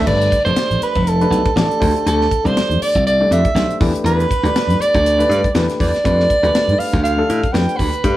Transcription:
0.06 G1 A3 D4 G4 B4 D5, kick, crash
0.21 closed hi-hat
0.32 kick, closed hi-hat
0.45 F1 A3 D4 G4 C5 D5, closed hi-hat
0.56 muted slap bass stroke, snare, closed hi-hat
0.70 B1, closed hi-hat
0.82 B4, closed hi-hat
0.95 F1, kick, closed hi-hat
1.07 G4 A4 B4, closed hi-hat
1.21 A3 D4 G4 B4, closed hi-hat
1.30 B1, closed hi-hat
1.45 kick, closed hi-hat
1.56 A1 A3 D4 G4 A4 D5, snare, closed hi-hat
1.71 closed hi-hat
1.80 D2 A3 D4 G4 C5, kick, open hi-hat
1.96 closed hi-hat
2.06 D2 A4, closed hi-hat
2.21 snare
2.31 kick, closed hi-hat
2.44 C2 A3 D4 G4 C5 D5, closed hi-hat
2.56 muted slap bass stroke, snare, closed hi-hat
2.70 F2, closed hi-hat
2.82 D5, muted slap bass stroke, open hi-hat
2.95 C2, kick
3.06 G4 A4 D5, closed hi-hat
3.20 A3 D4 G4 D5
3.31 F2 E5, closed hi-hat
3.45 kick, closed hi-hat
3.55 B1 A3 D4 G4 C5, snare, closed hi-hat
3.70 closed hi-hat
3.80 E2 A3 D4 G4 B4, kick, open hi-hat
3.95 closed hi-hat
4.04 E2 B4, closed hi-hat
4.20 closed hi-hat
4.31 kick, closed hi-hat
4.43 D2 A3 D4 G4 D5, closed hi-hat
4.56 snare, closed hi-hat
4.67 G2, closed hi-hat
4.79 D5, muted slap bass stroke, closed hi-hat
4.94 D2, kick, closed hi-hat
5.05 G4 B4, closed hi-hat
5.18 A3 D4 G4 B4, closed hi-hat
5.29 G2, closed hi-hat
5.44 kick, closed hi-hat
5.55 E2 A3 D4 G4 B4, snare, closed hi-hat
5.69 snare, closed hi-hat
5.80 E2 D5, kick, open hi-hat
5.94 snare, closed hi-hat
6.04 F2 A3 D4 G4 B4, kick, closed hi-hat
6.20 snare
6.30 kick, closed hi-hat
6.43 D2 A3 D4 G4 B4, closed hi-hat
6.55 snare, closed hi-hat
6.68 A2, closed hi-hat
6.79 F5, muted slap bass stroke, open hi-hat
6.93 D2, kick, snare, closed hi-hat
7.03 G4 A4 F5, closed hi-hat
7.17 A3 D4 G4 A4
7.29 A2, closed hi-hat
7.43 kick, closed hi-hat
7.52 F2 A3 D4 G4 B4 G5, snare, closed hi-hat
7.69 closed hi-hat
7.77 D2 B4, kick, open hi-hat
7.93 closed hi-hat
8.04 G2 A3 D4 G4 B4, kick, closed hi-hat

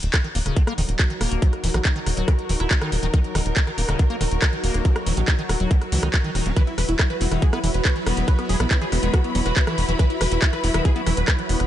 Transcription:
Already playing: F#3 D#4 F#4
0.03 D#1, closed hi-hat
0.14 kick, cross-stick, clap, closed hi-hat
0.24 D#3, closed hi-hat
0.32 D#1 A#3 A#4, open hi-hat
0.46 D#1 C#3, cross-stick, closed hi-hat
0.56 D#3, kick, closed hi-hat
0.67 A#3, cross-stick, closed hi-hat
0.78 D#1 D#3, open hi-hat
0.89 D#1, closed hi-hat
0.99 kick, cross-stick, clap, closed hi-hat
1.10 D#3, closed hi-hat
1.21 D#1 A#3, cross-stick, open hi-hat
1.31 D#1, closed hi-hat
1.42 D#3, kick, closed hi-hat
1.53 cross-stick, closed hi-hat
1.64 D#1 E3, open hi-hat
1.74 A#1 D#3, cross-stick, closed hi-hat
1.85 D#4, kick, clap, closed hi-hat
1.96 D#3, closed hi-hat
2.06 D#1 C#3, cross-stick, open hi-hat
2.17 D#1 F#3, closed hi-hat
2.28 D#3, kick, cross-stick, closed hi-hat
2.39 closed hi-hat
2.49 D#1 E3, open hi-hat
2.60 D#1 E4, cross-stick, closed hi-hat
2.71 kick, clap, closed hi-hat
2.81 D#3, cross-stick, closed hi-hat
2.92 D#1 C#3, open hi-hat
3.03 D#1 D#3, closed hi-hat
3.14 D#3, kick, cross-stick, closed hi-hat
3.24 closed hi-hat
3.35 D#1 D#3, cross-stick, open hi-hat
3.46 D#1, closed hi-hat
3.56 kick, clap, closed hi-hat
3.67 D#3, cross-stick, closed hi-hat
3.78 D#1 A#3, open hi-hat
3.89 D#1 C#3, cross-stick, closed hi-hat
3.99 D#3, kick, closed hi-hat
4.10 A#3, closed hi-hat
4.21 D#1 D#3, cross-stick, open hi-hat
4.31 D#1, closed hi-hat
4.42 kick, cross-stick, clap, closed hi-hat
4.53 D#3, closed hi-hat
4.64 D#1 A#3, open hi-hat
4.74 D#1, cross-stick, closed hi-hat
4.85 D#3, kick, closed hi-hat
4.96 cross-stick, closed hi-hat
5.06 D#1 E3, open hi-hat
5.17 A#1 D#3, closed hi-hat
5.28 D#4, kick, cross-stick, clap, closed hi-hat
5.39 D#3, closed hi-hat
5.49 D#1 C#3, cross-stick, open hi-hat
5.60 D#1 F#3, closed hi-hat
5.71 D#3, kick, closed hi-hat
5.82 cross-stick, closed hi-hat
5.92 C#2 E3, open hi-hat
6.03 C#2 D#3, cross-stick, closed hi-hat
6.14 kick, clap, closed hi-hat
6.24 D#3, closed hi-hat
6.35 D#1 D#3, cross-stick, open hi-hat
6.46 D#1 D#4, closed hi-hat
6.56 E3 E4 B4, kick, closed hi-hat
6.65 E4 B4, closed hi-hat
6.78 E1 E3 B4, cross-stick, open hi-hat
6.89 E1 E4, closed hi-hat
6.99 E4, kick, cross-stick, clap, closed hi-hat
7.08 E3 B4 B5, closed hi-hat
7.21 E1 B3 E4, open hi-hat
7.31 E1 D#3 E4, cross-stick, closed hi-hat
7.42 E3 G#4, kick, closed hi-hat
7.53 B3 E4, cross-stick, closed hi-hat
7.64 E1 E3 E4, open hi-hat
7.74 E1 B4, closed hi-hat
7.85 kick, cross-stick, clap, closed hi-hat
7.96 E3, closed hi-hat
8.06 E1 B3, cross-stick, open hi-hat
8.17 E1, closed hi-hat
8.28 E3 B4, kick, closed hi-hat
8.39 B3, cross-stick, closed hi-hat
8.49 E1 F#3 G#4, open hi-hat
8.60 B1 E3 B3, cross-stick, closed hi-hat
8.71 B3 E4, kick, clap, closed hi-hat
8.81 E3 G#4, closed hi-hat
8.92 E1 D#3 B3, cross-stick, open hi-hat
9.03 E1 G#3 B3, closed hi-hat
9.14 E3 F#4, kick, cross-stick, closed hi-hat
9.24 B3, closed hi-hat
9.35 E1 F#3 B3, open hi-hat
9.46 E1 F#4 B4, cross-stick, closed hi-hat
9.56 kick, clap, closed hi-hat
9.67 E3, cross-stick, closed hi-hat
9.78 E1 D#3, open hi-hat
9.89 E1 E3, closed hi-hat
9.99 E3 B4, kick, cross-stick, closed hi-hat
10.10 E4, closed hi-hat
10.21 E1 E3 B4, cross-stick, open hi-hat
10.31 E1 E4, closed hi-hat
10.42 E4, kick, clap, closed hi-hat
10.53 E3 B4, cross-stick, closed hi-hat
10.64 E1 B3 E4, open hi-hat
10.74 E1 D#3 E4, cross-stick, closed hi-hat
10.85 E3 G#4, kick, closed hi-hat
10.96 B3 E4, closed hi-hat
11.06 E1 E3 E4, cross-stick, open hi-hat
11.17 E1 B4, closed hi-hat
11.28 kick, cross-stick, clap, closed hi-hat
11.39 E3, closed hi-hat
11.49 E1 B3, open hi-hat
11.60 E1, cross-stick, closed hi-hat

